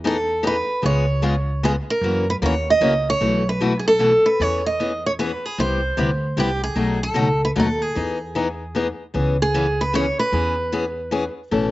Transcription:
Already playing: E2
0.04 E3 B3 D#4 G#4 A4
0.43 E3 B3 D#4 G#4
0.47 B4
0.82 C#2 C#3 G#3 B3 F4 G#4 C#5
1.22 C#3 G#3 B3 F4 G#4
1.63 C#3 G#3 B3 F4 G#4
1.90 A#4
2.01 F#2 C#3 E3 A#3 C#4 F#4
2.30 B4
2.42 D#2 C#3 E3 A#3 C#4 F#4 C#5
2.70 D#5
2.81 C#2 C#3 E3 A#3 C#4 F#4
3.10 C#5
3.21 B1 B2 E3 A3 E4 F#4
3.49 B4
3.61 B2 E3 A3 E4 F#4
3.79 G#4
3.88 A4
3.99 B2 E3 A3 E4 F#4
4.26 B4
4.40 E2 E3 B3 C#4 G#4 C#5
4.66 D#5
4.80 E3 B3 C#4 G#4
5.06 C#5
5.19 E3 B3 C#4 G#4 B4
5.45 G#4
5.58 C2 C3 G3 B3 E4 G4 C5
5.97 D2 C3 G3 B3 E4 G4
6.37 C2 C3 G3 B3 E4 G4
6.64 G#4
6.75 B1 B2 F#3 A3 D#4 F#4
7.03 A4
7.14 C#2 B2 F#3 A3 D#4 F#4
7.45 B4
7.56 D#2 B2 F#3 A3 D#4 F#4
7.60 A4
7.82 G#4
7.95 E2 E3 B3 D#4 G#4
8.35 E3 B3 D#4 G#4
8.75 E3 B3 D#4 G#4
9.14 C#2 C#3 E3 B3 C#4 G#4
9.42 G#4
9.54 C#3 E3 B3 C#4 G#4
9.81 B4
9.93 C#3 E3 B3 C#4 G#4 C#5
10.19 B4
10.32 E2 E3 B3 C#4 G#4
10.72 E3 B3 C#4 G#4
11.11 E3 B3 C#4 G#4
11.51 A1 B2 E3 A3 C#4 A4

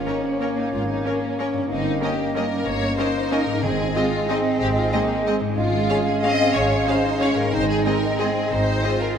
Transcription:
Already playing: G#2 G#3 A#3 C#4 C#5
0.06 A#3 C#4 D#4 A#4 C#5
0.25 C4
0.41 A#3 C#4 A#4 C#5
0.58 D#4
0.73 G#1 G#3 F4
0.89 D#4
1.05 A#3 C#4 A#4 C#5
1.39 A#3 C#4 A#4 C#5
1.53 G2
1.58 A#3
1.63 C#4
1.67 D#4 D#5
1.71 G1 A#3 C4 C#4 D#4
2.02 A#3 C#4 G4 A#4 D#5
2.34 G3 A#3 C#4 A#4 D#5
2.67 G1 A#3 C#5
2.97 A#3 C#4 D#4 A#4 C5 D#5
3.31 A#3 C#4 A#4 D#5
3.46 G#2
3.51 G#3
3.55 C4
3.60 G#2 G#3 C4 D#4 G#4
3.64 G#1 C4 D#5
3.95 G#3 C4 F4 G#4 D#5
4.28 G#3 C4 D#4 G#4 D#5
4.60 G#1 G4
4.77 F4
4.92 G#3 A#3 C4 D#4 G#4 D#5
5.26 G#3 C4 G#4 D#5
5.40 G#2
5.45 G#3
5.49 C#4
5.54 G#1 G#3 C#4 F4 G#4 F5
5.89 G#3 C#4 G#4 F5
6.06 G#4
6.22 G#3 C4 C#4 G#4 D#5 F5
6.54 G#1 C#4 C#5
6.87 G#3 C#4 D#4 G#4 C5 F5
7.20 G#3 C#4 G#4 C#5 F5
7.35 G#2 A#4
7.39 G#3
7.44 D#4
7.48 G#4
7.52 G#1 G#3 C4 D#4 C5 D#5
7.70 G#4
7.84 G#3 C4 D#4 G#4 A#4 D#5
8.19 G#3 C4 D#4 G#4 D#5
8.51 G#1 D#4 C5
8.83 G#3 C4 D#4 F4 G#4 D#5
9.01 A#4

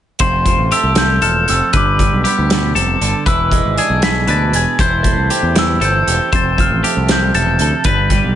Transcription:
0.19 F1 F2 C5 C6, kick, closed hi-hat
0.45 F3, kick, closed hi-hat
0.59 A1
0.72 A3 G4 E6, closed hi-hat
0.83 C2
0.95 G6, snare, closed hi-hat
1.22 E1 A4 F6, closed hi-hat
1.48 F1 F2 E6, closed hi-hat
1.73 G1 G2 B4 D6, kick, closed hi-hat
1.99 G3, kick, closed hi-hat
2.13 B1
2.24 B3 G4, closed hi-hat
2.38 D2
2.50 B2, snare, closed hi-hat
2.75 F1 C3 A4, closed hi-hat
3.01 G1 D3, closed hi-hat
3.26 E1 E3 B4 E6, kick, closed hi-hat
3.52 G#3, kick, closed hi-hat
3.66 G#1
3.78 D4 G#4 G#6, closed hi-hat
3.90 B1
4.02 B2 B6, snare, closed hi-hat
4.27 D2 D4 B4 A6, closed hi-hat
4.52 E1 G#4 G#6, closed hi-hat
4.79 E1 E3 C5 G6, kick, closed hi-hat
5.03 A3, kick, closed hi-hat
5.17 C2
5.30 C4 G4, closed hi-hat
5.43 E2
5.55 E3 E6, snare, closed hi-hat
5.80 G1 C4 A4, closed hi-hat
5.85 G6
6.07 E1 G4, closed hi-hat
6.33 F1 F2 C5 A6, kick, closed hi-hat
6.58 F3 F6, kick, closed hi-hat
6.70 A1
6.83 A3 G4, closed hi-hat
6.97 C2
7.08 C3 G6, snare, closed hi-hat
7.34 E1 A3 A4 A6, closed hi-hat
7.59 D2 A4, closed hi-hat
7.84 G1 G2 B4, kick, closed hi-hat
7.89 B6
8.10 G3, kick, closed hi-hat
8.24 B1

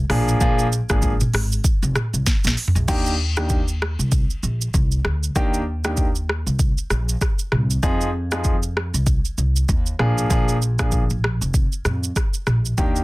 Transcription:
0.10 A#1 F3 A#3 D4 G#4, cross-stick, mid tom, open hi-hat
0.28 shaker
0.41 A#1 F3 A#3 D4 G#4, kick, shaker
0.59 shaker
0.72 shaker
0.89 G#1 F3 A#3 D4 G#4, kick, cross-stick, shaker
1.02 kick, shaker
1.20 mid tom, shaker
1.34 G#1, cross-stick, open hi-hat
1.52 shaker
1.64 kick, shaker
1.82 F1, shaker
1.96 cross-stick, mid tom, shaker
2.13 C2, shaker
2.26 kick, snare, shaker
2.44 A#1, snare, shaker
2.57 open hi-hat, shaker
2.68 floor tom
2.75 A#1, shaker
2.88 D#2 D#3 A#3 D4 G4, kick, crash, shaker
3.06 shaker
3.37 D#3 A#3 D4 G4, cross-stick, shaker
3.49 kick, shaker
3.68 shaker
3.82 cross-stick
3.99 C2, shaker
4.12 kick, shaker
4.30 shaker
4.43 A#1, shaker
4.61 shaker
4.74 C2, kick, shaker
4.92 shaker
5.05 D2, cross-stick
5.23 shaker
5.36 D#2 D#3 A#3 D4 G4, kick, shaker
5.54 shaker
5.84 D#3 A#3 D4 G4, cross-stick, shaker
5.97 kick, shaker
6.15 shaker
6.29 cross-stick
6.46 C2, shaker
6.59 kick, shaker
6.78 shaker
6.90 A#1, cross-stick, shaker
7.09 shaker
7.21 kick, cross-stick, shaker
7.39 shaker
7.52 C2, cross-stick, mid tom
7.71 shaker
7.83 F2 F3 C4 D#4 G#4, kick, shaker
8.01 shaker
8.32 F3 C4 D#4 G#4, cross-stick, shaker
8.44 kick, shaker
8.63 shaker
8.77 cross-stick
8.94 C2, shaker
9.07 kick, shaker
9.25 shaker
9.38 C2, shaker
9.56 shaker
9.69 D#2, kick, shaker
9.86 shaker
9.99 A#1 F3 A#3 D4 G#4, cross-stick, mid tom
10.18 shaker
10.30 A#1 F3 A#3 D4 G#4, kick, shaker
10.48 shaker
10.62 shaker
10.79 F3 A#3 D4 G#4, kick, cross-stick, shaker
10.92 kick, shaker
11.10 mid tom, shaker
11.24 cross-stick
11.41 F1, shaker
11.54 kick, shaker
11.72 shaker
11.85 F2, cross-stick, mid tom, shaker
12.04 shaker
12.16 kick, cross-stick, shaker
12.34 shaker
12.47 A#1, cross-stick, mid tom, shaker
12.65 shaker
12.78 D#2 D#3 A#3 D4 G4, kick, shaker
12.96 shaker

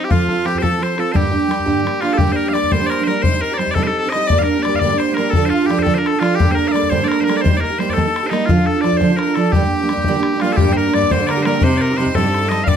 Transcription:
Already playing: D#4
0.04 G4
0.09 F3 C4 F4 A4, bodhran
0.20 bodhran
0.28 C4 F4 A4, bodhran
0.44 F3 C4 F4 G4 A4, bodhran
0.55 C5, bodhran
0.62 F3 C4 F4 A4, bodhran
0.79 F3 C4 F4 A4 C5, bodhran
0.96 C4 F4 A4, bodhran
1.12 G2 D3 G3 A#3 D4 G4 C5, bodhran
1.25 bodhran
1.31 G3 A#3 D4 G4, bodhran
1.48 G3 A#3 D4 G4, bodhran
1.60 bodhran
1.66 G2 D3 G3 A#3 D4 G4, bodhran
1.84 G3 A#3 D4 G4, bodhran
2.01 G3 A#3 D4 F4 G4, bodhran
2.13 A4
2.17 G2 D3 G3 A#3 D4 G4, bodhran
2.28 G3 A#3 D4 G4
2.32 A#4 C5
2.38 bodhran
2.46 G3 A#3 D4 G4 F5
2.53 G3 A#3 D4 D5, bodhran
2.57 G4
2.64 bodhran
2.71 G2 D3 G3 A#3 D4 G4 C5, bodhran
2.81 G3 A#3 D4 G4
2.86 A#4 D5
2.92 bodhran
2.99 G3 A#3 D4 G4
3.04 G3 A#4 C5
3.08 A#3 D4 G4
3.22 C3 C5, bodhran
3.26 G3 C4 D#4 G4
3.34 C4 D#4 G4
3.41 A#4, bodhran
3.51 C4 D#4 G4 D5
3.58 G3 C4 D#4 G4 C5, bodhran
3.68 D5, bodhran
3.74 C3 G3 C4 D#4 A4, bodhran
3.79 G4
3.83 D#4 G4 C5
3.87 C4 A4
3.98 A4
4.03 C4 D#4 G4
4.10 G3 D#5, bodhran
4.14 C4 D#4 G4
4.27 G2 D5, bodhran
4.31 D3 G3 A#3 D4 G4
4.38 G3 A#3 D4 G4 F5
4.43 A#4
4.48 bodhran
4.57 G3 A#3 D4 G4
4.63 G3 D5, bodhran
4.67 A#3 D4 G4
4.74 F5, bodhran
4.79 G2 D3 D5, bodhran
4.84 G3 A#3 D4 G4
4.91 G3 A#3 D4 G4
4.98 C5, bodhran
5.09 G3 A#3 D4 G4
5.14 G3 A#4, bodhran
5.19 A#3 D4 G4
5.30 A4, bodhran
5.35 D3 F3 D4 F4 A4
5.45 D4 F4 A4 C5
5.50 F4, bodhran
5.54 F4
5.62 D4 F4 A4
5.66 F3 G4
5.70 D4 F4 G4 A4, bodhran
5.78 C5, bodhran
5.83 D3 F3 D4 A4, bodhran
5.87 F4 A4
5.94 D4 F4 A4 A#4 C5
6.06 A4, bodhran
6.10 A4
6.15 D4 F4
6.20 F3 D4 F4, bodhran
6.24 A4
6.35 G2 G4
6.39 D3 G3 A#3 D4 A4, bodhran
6.48 G3 A#3 D4 A4 C5
6.55 A#4, bodhran
6.66 G3 A#3 D4 A4 F5
6.72 G3 A#3 D5, bodhran
6.76 D4 A4
6.83 bodhran
6.90 G2 D3 G3 A#3 D4 A4 C5, bodhran
7.01 G3 A#3 D4 A4 D5
7.08 A#4, bodhran
7.18 G3 A#3 D4 A4 C5
7.24 G3 A#4
7.29 A#3 D4 A4, bodhran
7.37 D5
7.41 D#3 G3 C5
7.45 A#3 D#4 G4, bodhran
7.52 A#3 D#4 G4
7.57 A#4 D5
7.63 A#4, bodhran
7.70 A#3 D#4 G4
7.79 G3 A#3 D#4 G4 C5, bodhran
7.89 D5, bodhran
7.93 D#3 G3 A#3 A4
7.98 D#4 G4, bodhran
8.06 A#3 D#4 G4
8.16 bodhran
8.23 A#3 D#4 G4 C5
8.30 G3 A#3 D#4, bodhran
8.34 G4
8.45 D3 F4, bodhran
8.49 F3 D4 F4 A4
8.57 D4 F4 A4
8.66 A4, bodhran
8.74 D4 F4 A4
8.81 F3 D4 D5, bodhran
8.85 F4 A4
8.93 bodhran
8.97 D3 C5, bodhran
9.01 F3 D4 F4 A4 C5
9.10 D4 F4 A4
9.16 A#4, bodhran
9.21 A#4
9.27 D4 F4 A4
9.35 F3 D4 F4 A4, bodhran
9.39 A4
9.52 G2 D3 G3 A#3 D4 G4, bodhran
9.63 G3 A#3 D4 G4
9.72 bodhran
9.81 G3 A#3 D4 G4
9.89 G3 A#3 D4 G4, bodhran
9.97 bodhran
10.04 G2 D3 G3, bodhran
10.08 A#3 D4 G4
10.17 G3 A#3 D4 G4
10.23 bodhran
10.34 G3 A#3 D4 G4
10.40 G3 A#3 F4, bodhran
10.44 D4 G4
10.53 G4 A4
10.58 G2 D3 G3 A#3 D4 G4, bodhran
10.68 G3 A#3 D4 G4
10.73 C5
10.77 A#4, bodhran
10.86 G3 A#3 D4 G4
10.94 G2 G3 A#3 D4 G4 D5, bodhran
11.02 bodhran
11.10 G2 D3 G3 A#3 D4 G4 C5, bodhran
11.20 G3 A#3 D4 G4
11.27 A#4 D5, bodhran
11.37 G3 A#3 D4 G4
11.43 G3 A#3 A#4 C5, bodhran
11.47 D4 G4
11.62 C3 G3 C4 D#4 G4 C5, bodhran
11.71 C4 D#4 G4
11.77 A#4 D5, bodhran
11.91 C4 D#4 G4
11.97 C3 G3 C4 D#4 C5, bodhran
12.01 G4
12.06 bodhran
12.15 G2 C3 G3 C4 D#4 G4 A4, bodhran
12.26 C4 D#4 G4
12.34 bodhran
12.42 C4 D#4 G4
12.49 G3 C4 D#4 D#5, bodhran
12.54 G4
12.64 G2 D3 G3 D5 F5, bodhran
12.68 A#3 D4 G4 D5

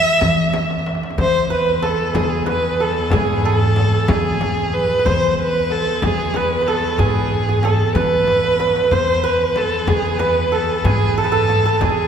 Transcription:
Already playing: G4 A4 C5 D5 E5
0.21 E3, frame drum, tombak dum
0.54 tombak tek, frame drum
0.63 tombak ka
0.70 tombak tek
0.79 tombak ka
0.86 tombak tek
0.95 tombak ka
1.03 tombak tek
1.10 tombak ka
1.18 E2 C5, frame drum, tombak dum
1.50 B4
1.82 A4, tombak tek, frame drum
2.14 E2 G#4, tombak dum, frame drum
2.23 A4
2.30 G#4
2.46 B4, tombak tek, frame drum
2.80 A4
3.10 G#2 G#4, tombak dum, frame drum
3.44 G#4 A4
3.55 A4
3.76 tombak tek, frame drum
4.08 E2 G#4, frame drum, tombak dum
4.41 tombak tek, frame drum
4.73 B4
4.99 B4
5.05 E2 C5, tombak dum, frame drum
5.30 C5
5.39 B4
5.70 A4, tombak tek
6.02 E2 G#4, frame drum, tombak dum
6.34 B4, tombak tek, frame drum
6.61 B4
6.67 A4
6.98 G#2 G#4, frame drum, tombak dum
7.31 tombak ka
7.49 G#4
7.63 A4, tombak tek, frame drum
7.95 E2 B4, tombak dum, frame drum
8.27 tombak tek, frame drum
8.35 tombak ka
8.43 tombak tek
8.51 tombak ka
8.59 B4, tombak tek
8.67 tombak ka
8.76 tombak tek
8.84 tombak ka
8.91 E2 C5, tombak dum, frame drum
9.24 B4
9.56 A4, tombak tek, frame drum
9.87 E2 G#4, frame drum, tombak dum
10.19 B4, tombak tek, frame drum
10.52 A4
10.84 G#2 G#4, tombak dum, frame drum
11.17 A4
11.24 B4
11.32 A4
11.49 tombak tek, frame drum
11.66 A4
11.74 A4
11.81 E2 G#4, frame drum, tombak dum

